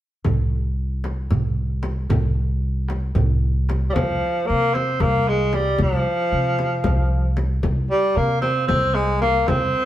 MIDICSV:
0, 0, Header, 1, 5, 480
1, 0, Start_track
1, 0, Tempo, 526778
1, 240, Time_signature, 7, 3, 24, 8
1, 8976, End_track
2, 0, Start_track
2, 0, Title_t, "Tenor saxophone"
2, 0, Program_c, 0, 66
2, 3553, Note_on_c, 0, 55, 55
2, 3586, Note_on_c, 0, 53, 75
2, 3599, Note_off_c, 0, 55, 0
2, 4073, Note_on_c, 0, 58, 82
2, 4087, Note_off_c, 0, 53, 0
2, 4324, Note_on_c, 0, 60, 73
2, 4337, Note_off_c, 0, 58, 0
2, 4569, Note_on_c, 0, 58, 78
2, 4583, Note_off_c, 0, 60, 0
2, 4811, Note_on_c, 0, 56, 73
2, 4825, Note_off_c, 0, 58, 0
2, 5056, Note_on_c, 0, 55, 73
2, 5070, Note_off_c, 0, 56, 0
2, 5289, Note_off_c, 0, 55, 0
2, 5301, Note_on_c, 0, 53, 73
2, 6694, Note_off_c, 0, 53, 0
2, 7202, Note_on_c, 0, 55, 74
2, 7442, Note_on_c, 0, 58, 80
2, 7456, Note_off_c, 0, 55, 0
2, 7660, Note_off_c, 0, 58, 0
2, 7665, Note_on_c, 0, 60, 78
2, 7895, Note_off_c, 0, 60, 0
2, 7907, Note_on_c, 0, 60, 84
2, 8153, Note_on_c, 0, 56, 71
2, 8167, Note_off_c, 0, 60, 0
2, 8390, Note_off_c, 0, 56, 0
2, 8395, Note_on_c, 0, 58, 81
2, 8638, Note_on_c, 0, 60, 89
2, 8652, Note_off_c, 0, 58, 0
2, 8976, Note_off_c, 0, 60, 0
2, 8976, End_track
3, 0, Start_track
3, 0, Title_t, "Upright bass"
3, 0, Program_c, 1, 32
3, 237, Note_on_c, 1, 36, 75
3, 1163, Note_off_c, 1, 36, 0
3, 1202, Note_on_c, 1, 36, 70
3, 1886, Note_off_c, 1, 36, 0
3, 1915, Note_on_c, 1, 36, 81
3, 2843, Note_off_c, 1, 36, 0
3, 2873, Note_on_c, 1, 36, 87
3, 3561, Note_off_c, 1, 36, 0
3, 3606, Note_on_c, 1, 36, 73
3, 3824, Note_off_c, 1, 36, 0
3, 4099, Note_on_c, 1, 48, 76
3, 4534, Note_off_c, 1, 48, 0
3, 4560, Note_on_c, 1, 36, 82
3, 5245, Note_off_c, 1, 36, 0
3, 5279, Note_on_c, 1, 36, 80
3, 5500, Note_off_c, 1, 36, 0
3, 5759, Note_on_c, 1, 48, 77
3, 6204, Note_off_c, 1, 48, 0
3, 6235, Note_on_c, 1, 36, 91
3, 6921, Note_off_c, 1, 36, 0
3, 6956, Note_on_c, 1, 36, 79
3, 7177, Note_off_c, 1, 36, 0
3, 7441, Note_on_c, 1, 48, 78
3, 7883, Note_off_c, 1, 48, 0
3, 7921, Note_on_c, 1, 36, 85
3, 8603, Note_off_c, 1, 36, 0
3, 8650, Note_on_c, 1, 36, 73
3, 8864, Note_off_c, 1, 36, 0
3, 8976, End_track
4, 0, Start_track
4, 0, Title_t, "Darbuka"
4, 230, Note_on_c, 9, 64, 65
4, 321, Note_off_c, 9, 64, 0
4, 957, Note_on_c, 9, 63, 54
4, 1048, Note_off_c, 9, 63, 0
4, 1193, Note_on_c, 9, 64, 72
4, 1284, Note_off_c, 9, 64, 0
4, 1314, Note_on_c, 9, 62, 21
4, 1405, Note_off_c, 9, 62, 0
4, 1665, Note_on_c, 9, 63, 61
4, 1756, Note_off_c, 9, 63, 0
4, 1910, Note_on_c, 9, 64, 70
4, 2001, Note_off_c, 9, 64, 0
4, 2629, Note_on_c, 9, 63, 56
4, 2720, Note_off_c, 9, 63, 0
4, 2875, Note_on_c, 9, 64, 77
4, 2966, Note_off_c, 9, 64, 0
4, 3000, Note_on_c, 9, 62, 22
4, 3091, Note_off_c, 9, 62, 0
4, 3361, Note_on_c, 9, 63, 55
4, 3452, Note_off_c, 9, 63, 0
4, 8976, End_track
5, 0, Start_track
5, 0, Title_t, "Frame drum"
5, 223, Note_on_c, 9, 64, 68
5, 314, Note_off_c, 9, 64, 0
5, 948, Note_on_c, 9, 64, 55
5, 1039, Note_off_c, 9, 64, 0
5, 1189, Note_on_c, 9, 64, 70
5, 1281, Note_off_c, 9, 64, 0
5, 1666, Note_on_c, 9, 64, 61
5, 1757, Note_off_c, 9, 64, 0
5, 1914, Note_on_c, 9, 64, 80
5, 2005, Note_off_c, 9, 64, 0
5, 2641, Note_on_c, 9, 64, 57
5, 2733, Note_off_c, 9, 64, 0
5, 2870, Note_on_c, 9, 64, 72
5, 2961, Note_off_c, 9, 64, 0
5, 3367, Note_on_c, 9, 64, 62
5, 3459, Note_off_c, 9, 64, 0
5, 3607, Note_on_c, 9, 64, 86
5, 3698, Note_off_c, 9, 64, 0
5, 4329, Note_on_c, 9, 64, 52
5, 4421, Note_off_c, 9, 64, 0
5, 4558, Note_on_c, 9, 64, 78
5, 4649, Note_off_c, 9, 64, 0
5, 5038, Note_on_c, 9, 64, 57
5, 5129, Note_off_c, 9, 64, 0
5, 5271, Note_on_c, 9, 64, 77
5, 5362, Note_off_c, 9, 64, 0
5, 6003, Note_on_c, 9, 64, 57
5, 6094, Note_off_c, 9, 64, 0
5, 6232, Note_on_c, 9, 64, 77
5, 6323, Note_off_c, 9, 64, 0
5, 6714, Note_on_c, 9, 64, 66
5, 6805, Note_off_c, 9, 64, 0
5, 6953, Note_on_c, 9, 64, 71
5, 7044, Note_off_c, 9, 64, 0
5, 7673, Note_on_c, 9, 64, 59
5, 7764, Note_off_c, 9, 64, 0
5, 7914, Note_on_c, 9, 64, 78
5, 8005, Note_off_c, 9, 64, 0
5, 8400, Note_on_c, 9, 64, 57
5, 8491, Note_off_c, 9, 64, 0
5, 8637, Note_on_c, 9, 64, 84
5, 8728, Note_off_c, 9, 64, 0
5, 8976, End_track
0, 0, End_of_file